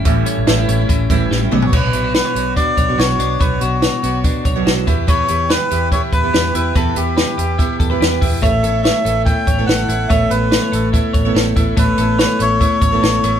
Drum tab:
CC |----------------|x---------------|----------------|----------------|
HH |x-x-x-x-x-x-----|--x-x-x-x-x-x-x-|x-x-x-x-x-x-x-x-|x-x-x-x-x-x-x-x-|
SD |----o-------o---|----o-------o---|----o-------o---|----o-------o---|
T2 |--------------o-|----------------|----------------|----------------|
FT |---------------o|----------------|----------------|----------------|
BD |o-------o-o-----|o-------o-o-----|o-------o-o---o-|o-------o-o-----|

CC |----------------|----------------|----------------|----------------|
HH |x-x-x-x-x-x-x-o-|x-x-x-x-x-x-x-x-|x-x-x-x-x-x-x-x-|x-x-x-x-x-x-x-x-|
SD |----o-------o---|----o-------o---|----o-------o---|----o-------o---|
T2 |----------------|----------------|----------------|----------------|
FT |----------------|----------------|----------------|----------------|
BD |o-------o-o---o-|o-------o-o-----|o-------o-o---o-|o-------o-o-----|